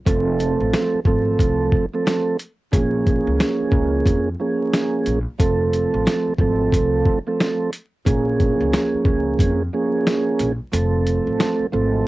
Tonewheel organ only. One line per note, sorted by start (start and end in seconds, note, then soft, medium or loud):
0.05 1.00 F3 loud
0.05 1.00 A3 medium
0.05 1.00 C4 medium
0.05 1.00 A4 loud
1.06 1.85 F3 medium
1.06 1.85 A3 medium
1.06 1.85 C4 medium
1.06 1.86 A4 loud
1.93 2.37 F3 medium
1.93 2.37 A3 medium
1.93 2.37 C4 medium
1.93 2.37 A4 medium
2.72 4.29 F3 medium
2.72 4.29 A#3 medium
2.72 4.29 C#4 medium
2.72 4.29 G#4 loud
4.40 5.19 F3 medium
4.40 5.19 A#3 medium
4.40 5.19 C#4 medium
4.40 5.19 G#4 loud
5.38 6.33 F3 medium
5.38 6.33 A3 medium
5.38 6.33 C4 medium
5.38 6.34 A4 loud
6.39 7.18 F3 medium
6.39 7.18 A3 medium
6.39 7.19 C4 medium
6.39 7.19 A4 loud
7.27 7.70 F3 medium
7.27 7.70 A3 medium
7.27 7.70 C4 medium
7.27 7.71 A4 loud
8.05 9.62 F3 medium
8.05 9.62 A#3 medium
8.05 9.62 C#4 medium
8.05 9.63 G#4 loud
9.73 10.52 F3 loud
9.73 10.52 A#3 medium
9.73 10.52 C#4 medium
9.73 10.53 G#4 loud
10.72 11.66 F3 medium
10.72 11.66 A3 medium
10.72 11.67 C4 medium
10.72 11.67 A4 loud
11.72 12.08 F3 medium
11.72 12.08 A3 medium
11.72 12.08 C4 medium
11.72 12.08 A4 loud